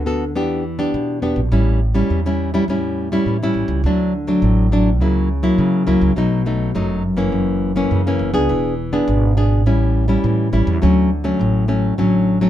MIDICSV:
0, 0, Header, 1, 3, 480
1, 0, Start_track
1, 0, Key_signature, 2, "major"
1, 0, Tempo, 581395
1, 1256, Time_signature, 4, 2, 24, 8
1, 10316, End_track
2, 0, Start_track
2, 0, Title_t, "Nylon-string guitar"
2, 0, Program_c, 0, 24
2, 0, Note_on_c, 0, 50, 61
2, 51, Note_on_c, 0, 59, 55
2, 55, Note_on_c, 0, 66, 55
2, 58, Note_on_c, 0, 69, 59
2, 196, Note_off_c, 0, 59, 0
2, 197, Note_off_c, 0, 66, 0
2, 198, Note_off_c, 0, 69, 0
2, 277, Note_off_c, 0, 50, 0
2, 293, Note_on_c, 0, 59, 55
2, 297, Note_on_c, 0, 52, 54
2, 298, Note_on_c, 0, 62, 56
2, 302, Note_on_c, 0, 67, 66
2, 520, Note_off_c, 0, 59, 0
2, 522, Note_off_c, 0, 62, 0
2, 524, Note_off_c, 0, 67, 0
2, 650, Note_on_c, 0, 59, 57
2, 651, Note_on_c, 0, 62, 65
2, 656, Note_on_c, 0, 67, 63
2, 752, Note_off_c, 0, 52, 0
2, 778, Note_on_c, 0, 47, 52
2, 974, Note_off_c, 0, 62, 0
2, 975, Note_off_c, 0, 59, 0
2, 976, Note_off_c, 0, 67, 0
2, 1009, Note_on_c, 0, 59, 50
2, 1013, Note_on_c, 0, 62, 57
2, 1016, Note_on_c, 0, 67, 55
2, 1154, Note_off_c, 0, 59, 0
2, 1156, Note_off_c, 0, 62, 0
2, 1157, Note_off_c, 0, 67, 0
2, 1233, Note_off_c, 0, 47, 0
2, 1254, Note_on_c, 0, 45, 56
2, 1254, Note_on_c, 0, 55, 58
2, 1258, Note_on_c, 0, 61, 52
2, 1264, Note_on_c, 0, 64, 57
2, 1479, Note_off_c, 0, 55, 0
2, 1482, Note_off_c, 0, 61, 0
2, 1483, Note_off_c, 0, 64, 0
2, 1606, Note_on_c, 0, 55, 60
2, 1612, Note_on_c, 0, 61, 59
2, 1613, Note_on_c, 0, 64, 66
2, 1710, Note_off_c, 0, 45, 0
2, 1741, Note_on_c, 0, 52, 58
2, 1812, Note_off_c, 0, 55, 0
2, 1814, Note_off_c, 0, 61, 0
2, 1815, Note_off_c, 0, 64, 0
2, 1865, Note_on_c, 0, 55, 59
2, 1869, Note_on_c, 0, 61, 65
2, 1876, Note_on_c, 0, 64, 59
2, 2061, Note_off_c, 0, 55, 0
2, 2064, Note_off_c, 0, 61, 0
2, 2065, Note_off_c, 0, 64, 0
2, 2096, Note_on_c, 0, 55, 60
2, 2100, Note_on_c, 0, 61, 61
2, 2103, Note_on_c, 0, 64, 69
2, 2177, Note_off_c, 0, 55, 0
2, 2179, Note_off_c, 0, 61, 0
2, 2180, Note_off_c, 0, 64, 0
2, 2194, Note_off_c, 0, 52, 0
2, 2223, Note_on_c, 0, 45, 52
2, 2225, Note_on_c, 0, 55, 53
2, 2228, Note_on_c, 0, 61, 54
2, 2236, Note_on_c, 0, 64, 51
2, 2540, Note_off_c, 0, 55, 0
2, 2543, Note_off_c, 0, 61, 0
2, 2545, Note_off_c, 0, 64, 0
2, 2576, Note_on_c, 0, 55, 63
2, 2581, Note_on_c, 0, 61, 57
2, 2583, Note_on_c, 0, 64, 67
2, 2675, Note_off_c, 0, 45, 0
2, 2709, Note_on_c, 0, 52, 53
2, 2777, Note_off_c, 0, 55, 0
2, 2778, Note_off_c, 0, 61, 0
2, 2780, Note_off_c, 0, 64, 0
2, 2829, Note_on_c, 0, 55, 59
2, 2836, Note_on_c, 0, 61, 62
2, 2836, Note_on_c, 0, 64, 66
2, 3143, Note_off_c, 0, 55, 0
2, 3145, Note_off_c, 0, 61, 0
2, 3146, Note_off_c, 0, 64, 0
2, 3157, Note_off_c, 0, 52, 0
2, 3184, Note_on_c, 0, 50, 56
2, 3187, Note_on_c, 0, 57, 55
2, 3189, Note_on_c, 0, 54, 51
2, 3191, Note_on_c, 0, 62, 62
2, 3405, Note_off_c, 0, 54, 0
2, 3406, Note_off_c, 0, 57, 0
2, 3406, Note_off_c, 0, 62, 0
2, 3530, Note_on_c, 0, 54, 56
2, 3533, Note_on_c, 0, 57, 57
2, 3536, Note_on_c, 0, 62, 65
2, 3635, Note_off_c, 0, 50, 0
2, 3668, Note_on_c, 0, 45, 53
2, 3853, Note_off_c, 0, 54, 0
2, 3853, Note_off_c, 0, 57, 0
2, 3856, Note_off_c, 0, 62, 0
2, 3898, Note_on_c, 0, 54, 55
2, 3899, Note_on_c, 0, 57, 53
2, 3906, Note_on_c, 0, 62, 67
2, 4037, Note_off_c, 0, 54, 0
2, 4037, Note_off_c, 0, 57, 0
2, 4040, Note_off_c, 0, 62, 0
2, 4117, Note_off_c, 0, 45, 0
2, 4137, Note_on_c, 0, 49, 55
2, 4141, Note_on_c, 0, 54, 54
2, 4143, Note_on_c, 0, 58, 50
2, 4146, Note_on_c, 0, 64, 54
2, 4361, Note_off_c, 0, 54, 0
2, 4363, Note_off_c, 0, 58, 0
2, 4364, Note_off_c, 0, 64, 0
2, 4483, Note_on_c, 0, 54, 63
2, 4488, Note_on_c, 0, 58, 58
2, 4489, Note_on_c, 0, 64, 60
2, 4591, Note_off_c, 0, 49, 0
2, 4612, Note_on_c, 0, 49, 54
2, 4810, Note_off_c, 0, 54, 0
2, 4811, Note_off_c, 0, 58, 0
2, 4812, Note_off_c, 0, 64, 0
2, 4843, Note_on_c, 0, 54, 53
2, 4848, Note_on_c, 0, 58, 53
2, 4851, Note_on_c, 0, 64, 62
2, 5050, Note_off_c, 0, 54, 0
2, 5051, Note_off_c, 0, 58, 0
2, 5054, Note_off_c, 0, 64, 0
2, 5069, Note_off_c, 0, 49, 0
2, 5092, Note_on_c, 0, 54, 49
2, 5096, Note_on_c, 0, 47, 57
2, 5099, Note_on_c, 0, 57, 51
2, 5102, Note_on_c, 0, 63, 58
2, 5295, Note_off_c, 0, 54, 0
2, 5296, Note_off_c, 0, 57, 0
2, 5298, Note_off_c, 0, 63, 0
2, 5333, Note_on_c, 0, 54, 56
2, 5336, Note_on_c, 0, 57, 54
2, 5341, Note_on_c, 0, 63, 56
2, 5535, Note_off_c, 0, 54, 0
2, 5537, Note_off_c, 0, 57, 0
2, 5538, Note_off_c, 0, 63, 0
2, 5551, Note_off_c, 0, 47, 0
2, 5570, Note_on_c, 0, 42, 58
2, 5577, Note_on_c, 0, 54, 61
2, 5577, Note_on_c, 0, 57, 60
2, 5581, Note_on_c, 0, 63, 67
2, 5799, Note_off_c, 0, 54, 0
2, 5800, Note_off_c, 0, 57, 0
2, 5802, Note_off_c, 0, 63, 0
2, 5917, Note_on_c, 0, 52, 58
2, 5922, Note_on_c, 0, 58, 59
2, 5926, Note_on_c, 0, 61, 65
2, 6029, Note_off_c, 0, 42, 0
2, 6046, Note_on_c, 0, 42, 57
2, 6367, Note_off_c, 0, 52, 0
2, 6370, Note_off_c, 0, 58, 0
2, 6371, Note_off_c, 0, 61, 0
2, 6405, Note_on_c, 0, 52, 64
2, 6410, Note_on_c, 0, 58, 61
2, 6415, Note_on_c, 0, 61, 64
2, 6506, Note_off_c, 0, 42, 0
2, 6539, Note_on_c, 0, 49, 57
2, 6612, Note_off_c, 0, 52, 0
2, 6613, Note_off_c, 0, 58, 0
2, 6613, Note_off_c, 0, 61, 0
2, 6662, Note_on_c, 0, 52, 61
2, 6665, Note_on_c, 0, 58, 61
2, 6666, Note_on_c, 0, 61, 70
2, 6859, Note_off_c, 0, 58, 0
2, 6860, Note_off_c, 0, 52, 0
2, 6862, Note_off_c, 0, 61, 0
2, 6882, Note_on_c, 0, 59, 56
2, 6887, Note_on_c, 0, 62, 56
2, 6888, Note_on_c, 0, 68, 70
2, 6993, Note_off_c, 0, 49, 0
2, 7018, Note_on_c, 0, 52, 58
2, 7210, Note_off_c, 0, 59, 0
2, 7211, Note_off_c, 0, 62, 0
2, 7213, Note_off_c, 0, 68, 0
2, 7370, Note_on_c, 0, 59, 53
2, 7372, Note_on_c, 0, 62, 63
2, 7376, Note_on_c, 0, 68, 66
2, 7472, Note_off_c, 0, 52, 0
2, 7495, Note_on_c, 0, 47, 55
2, 7694, Note_off_c, 0, 59, 0
2, 7694, Note_off_c, 0, 62, 0
2, 7696, Note_off_c, 0, 68, 0
2, 7735, Note_on_c, 0, 59, 61
2, 7739, Note_on_c, 0, 62, 57
2, 7741, Note_on_c, 0, 68, 67
2, 7937, Note_off_c, 0, 59, 0
2, 7939, Note_off_c, 0, 62, 0
2, 7939, Note_off_c, 0, 68, 0
2, 7951, Note_off_c, 0, 47, 0
2, 7975, Note_on_c, 0, 45, 58
2, 7976, Note_on_c, 0, 55, 56
2, 7982, Note_on_c, 0, 61, 61
2, 7983, Note_on_c, 0, 64, 65
2, 8297, Note_off_c, 0, 55, 0
2, 8298, Note_off_c, 0, 61, 0
2, 8301, Note_off_c, 0, 64, 0
2, 8322, Note_on_c, 0, 55, 65
2, 8330, Note_on_c, 0, 61, 66
2, 8332, Note_on_c, 0, 64, 71
2, 8432, Note_off_c, 0, 45, 0
2, 8453, Note_on_c, 0, 52, 56
2, 8650, Note_off_c, 0, 55, 0
2, 8655, Note_off_c, 0, 61, 0
2, 8655, Note_off_c, 0, 64, 0
2, 8691, Note_on_c, 0, 55, 59
2, 8694, Note_on_c, 0, 61, 48
2, 8697, Note_on_c, 0, 64, 60
2, 8895, Note_off_c, 0, 55, 0
2, 8896, Note_off_c, 0, 61, 0
2, 8898, Note_off_c, 0, 64, 0
2, 8910, Note_off_c, 0, 52, 0
2, 8929, Note_on_c, 0, 50, 56
2, 8932, Note_on_c, 0, 54, 61
2, 8937, Note_on_c, 0, 57, 54
2, 8941, Note_on_c, 0, 61, 67
2, 9158, Note_off_c, 0, 54, 0
2, 9162, Note_off_c, 0, 57, 0
2, 9164, Note_off_c, 0, 61, 0
2, 9280, Note_on_c, 0, 54, 60
2, 9283, Note_on_c, 0, 57, 58
2, 9288, Note_on_c, 0, 61, 69
2, 9389, Note_off_c, 0, 50, 0
2, 9407, Note_on_c, 0, 45, 57
2, 9610, Note_off_c, 0, 54, 0
2, 9612, Note_off_c, 0, 57, 0
2, 9613, Note_off_c, 0, 61, 0
2, 9642, Note_on_c, 0, 54, 55
2, 9646, Note_on_c, 0, 57, 58
2, 9651, Note_on_c, 0, 61, 60
2, 9851, Note_off_c, 0, 54, 0
2, 9853, Note_off_c, 0, 57, 0
2, 9854, Note_off_c, 0, 61, 0
2, 9868, Note_off_c, 0, 45, 0
2, 9893, Note_on_c, 0, 50, 56
2, 9893, Note_on_c, 0, 54, 57
2, 9897, Note_on_c, 0, 57, 53
2, 9901, Note_on_c, 0, 61, 59
2, 10216, Note_off_c, 0, 54, 0
2, 10217, Note_off_c, 0, 57, 0
2, 10221, Note_off_c, 0, 61, 0
2, 10248, Note_on_c, 0, 54, 59
2, 10254, Note_on_c, 0, 57, 62
2, 10259, Note_on_c, 0, 61, 60
2, 10316, Note_off_c, 0, 50, 0
2, 10316, Note_off_c, 0, 54, 0
2, 10316, Note_off_c, 0, 57, 0
2, 10316, Note_off_c, 0, 61, 0
2, 10316, End_track
3, 0, Start_track
3, 0, Title_t, "Upright bass"
3, 0, Program_c, 1, 32
3, 0, Note_on_c, 1, 38, 90
3, 293, Note_off_c, 1, 38, 0
3, 293, Note_on_c, 1, 40, 90
3, 702, Note_off_c, 1, 40, 0
3, 776, Note_on_c, 1, 52, 88
3, 980, Note_off_c, 1, 52, 0
3, 1008, Note_on_c, 1, 40, 82
3, 1113, Note_off_c, 1, 40, 0
3, 1123, Note_on_c, 1, 34, 91
3, 1230, Note_off_c, 1, 34, 0
3, 1252, Note_on_c, 1, 33, 92
3, 1661, Note_off_c, 1, 33, 0
3, 1735, Note_on_c, 1, 40, 86
3, 2143, Note_off_c, 1, 40, 0
3, 2213, Note_on_c, 1, 40, 86
3, 2621, Note_off_c, 1, 40, 0
3, 2691, Note_on_c, 1, 45, 74
3, 2896, Note_off_c, 1, 45, 0
3, 2922, Note_on_c, 1, 33, 80
3, 3029, Note_off_c, 1, 33, 0
3, 3039, Note_on_c, 1, 37, 95
3, 3147, Note_off_c, 1, 37, 0
3, 3168, Note_on_c, 1, 38, 94
3, 3578, Note_off_c, 1, 38, 0
3, 3649, Note_on_c, 1, 33, 88
3, 4128, Note_off_c, 1, 33, 0
3, 4128, Note_on_c, 1, 37, 89
3, 4538, Note_off_c, 1, 37, 0
3, 4609, Note_on_c, 1, 49, 85
3, 4814, Note_off_c, 1, 49, 0
3, 4848, Note_on_c, 1, 37, 74
3, 4952, Note_off_c, 1, 37, 0
3, 4966, Note_on_c, 1, 37, 91
3, 5071, Note_off_c, 1, 37, 0
3, 5087, Note_on_c, 1, 35, 82
3, 5498, Note_off_c, 1, 35, 0
3, 5571, Note_on_c, 1, 31, 85
3, 6046, Note_off_c, 1, 31, 0
3, 6046, Note_on_c, 1, 30, 85
3, 6457, Note_off_c, 1, 30, 0
3, 6530, Note_on_c, 1, 42, 82
3, 6736, Note_off_c, 1, 42, 0
3, 6764, Note_on_c, 1, 30, 84
3, 6870, Note_off_c, 1, 30, 0
3, 6882, Note_on_c, 1, 37, 99
3, 6989, Note_off_c, 1, 37, 0
3, 7011, Note_on_c, 1, 28, 91
3, 7421, Note_off_c, 1, 28, 0
3, 7494, Note_on_c, 1, 32, 100
3, 7973, Note_off_c, 1, 32, 0
3, 7973, Note_on_c, 1, 33, 88
3, 8382, Note_off_c, 1, 33, 0
3, 8453, Note_on_c, 1, 45, 91
3, 8658, Note_off_c, 1, 45, 0
3, 8691, Note_on_c, 1, 33, 84
3, 8795, Note_off_c, 1, 33, 0
3, 8810, Note_on_c, 1, 40, 99
3, 8914, Note_off_c, 1, 40, 0
3, 8941, Note_on_c, 1, 38, 99
3, 9347, Note_off_c, 1, 38, 0
3, 9418, Note_on_c, 1, 33, 92
3, 9826, Note_off_c, 1, 33, 0
3, 9898, Note_on_c, 1, 33, 85
3, 10306, Note_off_c, 1, 33, 0
3, 10316, End_track
0, 0, End_of_file